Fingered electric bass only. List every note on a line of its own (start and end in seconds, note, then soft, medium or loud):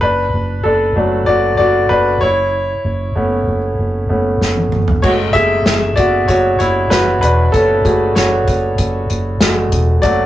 0.02 0.28 F#1 medium
0.34 0.59 F#1 medium
0.65 0.91 F#1 medium
0.96 1.22 F#1 medium
1.28 1.53 F#1 medium
1.59 1.85 F#1 medium
1.90 2.16 F#1 medium
2.22 2.73 F#1 medium
2.85 3.10 F#1 medium
3.16 3.41 F#1 medium
3.47 3.73 F#1 medium
3.79 4.04 F#1 medium
4.10 4.36 F#1 medium
4.41 4.67 F#1 medium
4.73 4.98 F#1 medium
5.04 5.29 F#1 medium
5.35 5.60 F#1 medium
5.66 5.92 F#1 medium
5.98 6.23 F#1 medium
6.29 6.54 F#1 medium
6.60 6.86 F#1 medium
6.92 7.17 F#1 medium
7.23 7.48 E1 medium
7.54 7.80 F#1 medium
7.85 8.11 F#1 medium
8.17 8.42 F#1 medium
8.48 8.73 F#1 medium
8.79 9.05 F#1 medium
9.10 9.36 F#1 medium
9.41 9.67 F#1 medium
9.72 9.98 E1 medium
10.03 10.26 F#1 medium